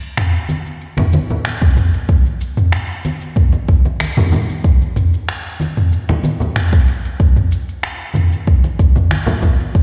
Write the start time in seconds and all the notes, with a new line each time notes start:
0.03 shaker
0.17 finger snap, mid tom, shaker
0.35 shaker
0.49 high conga, shaker
0.66 shaker
0.81 shaker
0.97 finger snap, mid tom, high conga, low conga, shaker
1.13 muted conga, high conga, shaker
1.30 low conga, shaker
1.45 finger snap, shaker
1.61 kick, muted conga, shaker
1.77 mid tom, shaker
1.94 shaker
2.09 kick, shaker
2.25 high conga, shaker
2.41 shaker
2.57 mid tom, shaker
2.72 finger snap, shaker
2.90 shaker
3.05 high conga, shaker
3.21 shaker
3.36 kick, mid tom, shaker
3.52 muted conga, shaker
3.68 kick, shaker
3.85 muted conga, shaker
4.00 finger snap, high conga, shaker
4.17 mid tom, muted conga, low conga, shaker
4.32 high conga, low conga, shaker
4.50 high conga, shaker
4.64 kick, shaker
4.81 high conga, shaker
4.96 mid tom, shaker
5.14 shaker
5.29 finger snap, shaker
5.46 shaker
5.60 high conga, shaker
5.77 mid tom, shaker
5.93 shaker
6.09 finger snap, high conga, low conga, shaker
6.23 muted conga, high conga, shaker
6.40 low conga, shaker
6.56 finger snap, mid tom, shaker
6.72 kick, muted conga, shaker
6.88 shaker
7.05 shaker
7.20 kick, shaker
7.36 mid tom, high conga, shaker
7.52 shaker
7.69 shaker
7.83 finger snap, shaker
8.01 shaker
8.14 mid tom, high conga, shaker
8.32 shaker
8.47 kick, shaker
8.64 muted conga, shaker
8.79 kick, shaker
8.96 mid tom, muted conga, shaker
9.10 finger snap, high conga, shaker
9.26 muted conga, low conga, shaker
9.42 kick, high conga, low conga, shaker
9.60 high conga, shaker
9.75 kick, shaker